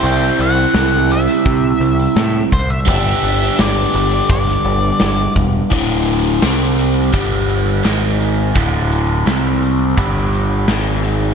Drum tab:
CC |----------------|----------------|x---------------|----------------|
HH |--xxx-xxx-xxx-x-|x-x-x-xxx-x-x-x-|--x-x-x-x-x-x-x-|x-x-x-x-x-x-x-x-|
SD |----o-------o---|----o----o--o---|----o-------o---|----o-------o---|
BD |--------o-----o-|o-------o-----o-|o-------o-------|o-------o-------|